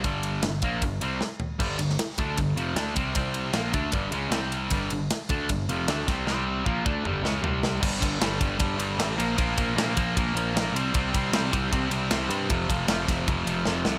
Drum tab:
CC |----------------|x---------------|----------------|----------------|
RD |x-x-x-x-x-x-----|--x-x-x-x-x-x-x-|x-x-x-x-x-x-x-x-|x-x-x-x-x-x-x-x-|
SD |----o-------o---|---oo-------o---|----o-------o---|----o-------o-o-|
T2 |----------------|----------------|----------------|----------------|
FT |--------------o-|----------------|----------------|----------------|
BD |o-----o-o-------|o-----o-o-----o-|o-----o-o-------|o-----o-o-----o-|

CC |----------------|x---------------|----------------|----------------|
RD |----------------|--x-x-x-x-x-x-x-|x-x-x-x-x-x-x-x-|x-x-x-x-x-x-x-x-|
SD |o---------o---o-|----o-------o---|----o-------o---|----o-------o---|
T2 |--------o-------|----------------|----------------|----------------|
FT |------------o---|----------------|----------------|----------------|
BD |----o-o---------|o-o---o-o-------|o-o---o-o-------|o-o---o-o-------|

CC |----------------|
RD |x-x-x-x-x-x-----|
SD |----o-o-----o-o-|
T2 |----------------|
FT |----------------|
BD |o-o---o-o-------|